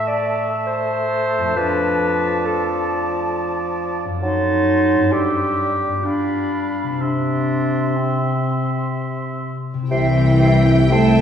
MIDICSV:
0, 0, Header, 1, 13, 480
1, 0, Start_track
1, 0, Key_signature, 0, "major"
1, 0, Tempo, 892857
1, 840, Time_signature, 3, 2, 24, 8
1, 2272, Tempo, 914634
1, 3232, Tempo, 964630
1, 5152, Tempo, 993377
1, 5780, End_track
2, 0, Start_track
2, 0, Title_t, "Flute"
2, 0, Program_c, 0, 73
2, 0, Note_on_c, 0, 81, 51
2, 2157, Note_off_c, 0, 81, 0
2, 2278, Note_on_c, 0, 84, 50
2, 3087, Note_off_c, 0, 84, 0
2, 3232, Note_on_c, 0, 83, 42
2, 3707, Note_on_c, 0, 84, 39
2, 3715, Note_off_c, 0, 83, 0
2, 4985, Note_off_c, 0, 84, 0
2, 5149, Note_on_c, 0, 76, 60
2, 5636, Note_on_c, 0, 81, 68
2, 5643, Note_off_c, 0, 76, 0
2, 5780, Note_off_c, 0, 81, 0
2, 5780, End_track
3, 0, Start_track
3, 0, Title_t, "Violin section"
3, 0, Program_c, 1, 48
3, 5153, Note_on_c, 1, 79, 48
3, 5780, Note_off_c, 1, 79, 0
3, 5780, End_track
4, 0, Start_track
4, 0, Title_t, "Oboe"
4, 0, Program_c, 2, 68
4, 0, Note_on_c, 2, 76, 52
4, 817, Note_off_c, 2, 76, 0
4, 840, Note_on_c, 2, 74, 50
4, 2181, Note_off_c, 2, 74, 0
4, 2272, Note_on_c, 2, 81, 44
4, 2743, Note_on_c, 2, 76, 40
4, 2751, Note_off_c, 2, 81, 0
4, 3083, Note_off_c, 2, 76, 0
4, 3235, Note_on_c, 2, 77, 39
4, 3708, Note_on_c, 2, 76, 39
4, 3716, Note_off_c, 2, 77, 0
4, 4986, Note_off_c, 2, 76, 0
4, 5152, Note_on_c, 2, 84, 48
4, 5229, Note_off_c, 2, 84, 0
4, 5391, Note_on_c, 2, 84, 41
4, 5469, Note_off_c, 2, 84, 0
4, 5637, Note_on_c, 2, 84, 46
4, 5714, Note_off_c, 2, 84, 0
4, 5780, End_track
5, 0, Start_track
5, 0, Title_t, "Violin section"
5, 0, Program_c, 3, 48
5, 5638, Note_on_c, 3, 76, 55
5, 5780, Note_off_c, 3, 76, 0
5, 5780, End_track
6, 0, Start_track
6, 0, Title_t, "Clarinet"
6, 0, Program_c, 4, 71
6, 39, Note_on_c, 4, 74, 64
6, 244, Note_off_c, 4, 74, 0
6, 359, Note_on_c, 4, 72, 74
6, 842, Note_on_c, 4, 71, 76
6, 850, Note_off_c, 4, 72, 0
6, 1322, Note_on_c, 4, 69, 60
6, 1330, Note_off_c, 4, 71, 0
6, 1799, Note_off_c, 4, 69, 0
6, 2271, Note_on_c, 4, 63, 69
6, 2742, Note_on_c, 4, 67, 69
6, 2750, Note_off_c, 4, 63, 0
6, 3228, Note_on_c, 4, 62, 60
6, 3236, Note_off_c, 4, 67, 0
6, 3704, Note_off_c, 4, 62, 0
6, 3707, Note_on_c, 4, 62, 61
6, 4182, Note_on_c, 4, 60, 43
6, 4189, Note_off_c, 4, 62, 0
6, 4667, Note_off_c, 4, 60, 0
6, 5148, Note_on_c, 4, 79, 48
6, 5226, Note_off_c, 4, 79, 0
6, 5386, Note_on_c, 4, 79, 45
6, 5463, Note_off_c, 4, 79, 0
6, 5631, Note_on_c, 4, 79, 44
6, 5708, Note_off_c, 4, 79, 0
6, 5780, End_track
7, 0, Start_track
7, 0, Title_t, "French horn section"
7, 0, Program_c, 5, 60
7, 5145, Note_on_c, 5, 64, 64
7, 5614, Note_off_c, 5, 64, 0
7, 5632, Note_on_c, 5, 69, 78
7, 5780, Note_off_c, 5, 69, 0
7, 5780, End_track
8, 0, Start_track
8, 0, Title_t, "Harp"
8, 0, Program_c, 6, 46
8, 0, Note_on_c, 6, 45, 45
8, 0, Note_on_c, 6, 57, 39
8, 0, Note_on_c, 6, 64, 36
8, 0, Note_on_c, 6, 69, 34
8, 745, Note_on_c, 6, 41, 44
8, 761, Note_off_c, 6, 57, 0
8, 767, Note_on_c, 6, 57, 38
8, 792, Note_on_c, 6, 62, 36
8, 810, Note_off_c, 6, 69, 0
8, 812, Note_off_c, 6, 45, 0
8, 816, Note_on_c, 6, 69, 38
8, 835, Note_off_c, 6, 64, 0
8, 2178, Note_on_c, 6, 42, 42
8, 2201, Note_on_c, 6, 60, 37
8, 2225, Note_on_c, 6, 66, 34
8, 2244, Note_off_c, 6, 69, 0
8, 2245, Note_off_c, 6, 41, 0
8, 2250, Note_on_c, 6, 69, 33
8, 2269, Note_off_c, 6, 62, 0
8, 2652, Note_on_c, 6, 43, 42
8, 2669, Note_off_c, 6, 60, 0
8, 2676, Note_on_c, 6, 60, 33
8, 2700, Note_on_c, 6, 64, 32
8, 2719, Note_off_c, 6, 42, 0
8, 2723, Note_on_c, 6, 67, 34
8, 2730, Note_off_c, 6, 57, 0
8, 2742, Note_off_c, 6, 66, 0
8, 2754, Note_off_c, 6, 69, 0
8, 3134, Note_off_c, 6, 43, 0
8, 3140, Note_on_c, 6, 43, 36
8, 3163, Note_on_c, 6, 59, 28
8, 3188, Note_on_c, 6, 65, 30
8, 3205, Note_off_c, 6, 67, 0
8, 3211, Note_on_c, 6, 67, 30
8, 3218, Note_off_c, 6, 60, 0
8, 3230, Note_off_c, 6, 64, 0
8, 3619, Note_on_c, 6, 48, 35
8, 3643, Note_on_c, 6, 60, 29
8, 3665, Note_on_c, 6, 64, 29
8, 3681, Note_off_c, 6, 67, 0
8, 3682, Note_off_c, 6, 43, 0
8, 3687, Note_on_c, 6, 67, 31
8, 3693, Note_off_c, 6, 59, 0
8, 3705, Note_off_c, 6, 65, 0
8, 5059, Note_off_c, 6, 48, 0
8, 5065, Note_on_c, 6, 48, 44
8, 5082, Note_off_c, 6, 60, 0
8, 5088, Note_on_c, 6, 60, 36
8, 5104, Note_off_c, 6, 64, 0
8, 5110, Note_on_c, 6, 64, 36
8, 5127, Note_off_c, 6, 67, 0
8, 5133, Note_on_c, 6, 67, 38
8, 5780, Note_off_c, 6, 48, 0
8, 5780, Note_off_c, 6, 60, 0
8, 5780, Note_off_c, 6, 64, 0
8, 5780, Note_off_c, 6, 67, 0
8, 5780, End_track
9, 0, Start_track
9, 0, Title_t, "Viola section"
9, 0, Program_c, 7, 48
9, 5152, Note_on_c, 7, 60, 42
9, 5154, Note_on_c, 7, 55, 53
9, 5263, Note_off_c, 7, 55, 0
9, 5265, Note_off_c, 7, 60, 0
9, 5270, Note_on_c, 7, 60, 46
9, 5392, Note_on_c, 7, 64, 47
9, 5393, Note_off_c, 7, 60, 0
9, 5516, Note_off_c, 7, 64, 0
9, 5516, Note_on_c, 7, 67, 44
9, 5632, Note_on_c, 7, 64, 51
9, 5636, Note_off_c, 7, 67, 0
9, 5750, Note_on_c, 7, 60, 43
9, 5751, Note_off_c, 7, 64, 0
9, 5780, Note_off_c, 7, 60, 0
9, 5780, End_track
10, 0, Start_track
10, 0, Title_t, "Cello section"
10, 0, Program_c, 8, 48
10, 5153, Note_on_c, 8, 52, 51
10, 5617, Note_off_c, 8, 52, 0
10, 5635, Note_on_c, 8, 57, 58
10, 5780, Note_off_c, 8, 57, 0
10, 5780, End_track
11, 0, Start_track
11, 0, Title_t, "Bassoon"
11, 0, Program_c, 10, 70
11, 0, Note_on_c, 10, 57, 58
11, 818, Note_off_c, 10, 57, 0
11, 839, Note_on_c, 10, 53, 55
11, 2180, Note_off_c, 10, 53, 0
11, 2271, Note_on_c, 10, 54, 51
11, 2737, Note_on_c, 10, 55, 53
11, 2745, Note_off_c, 10, 54, 0
11, 3558, Note_off_c, 10, 55, 0
11, 3702, Note_on_c, 10, 48, 48
11, 4963, Note_off_c, 10, 48, 0
11, 5149, Note_on_c, 10, 48, 46
11, 5227, Note_off_c, 10, 48, 0
11, 5391, Note_on_c, 10, 48, 40
11, 5468, Note_off_c, 10, 48, 0
11, 5634, Note_on_c, 10, 48, 43
11, 5711, Note_off_c, 10, 48, 0
11, 5780, End_track
12, 0, Start_track
12, 0, Title_t, "Double bass section"
12, 0, Program_c, 11, 48
12, 5153, Note_on_c, 11, 36, 57
12, 5780, Note_off_c, 11, 36, 0
12, 5780, End_track
13, 0, Start_track
13, 0, Title_t, "Tuba"
13, 0, Program_c, 12, 58
13, 5148, Note_on_c, 12, 36, 47
13, 5780, Note_off_c, 12, 36, 0
13, 5780, End_track
0, 0, End_of_file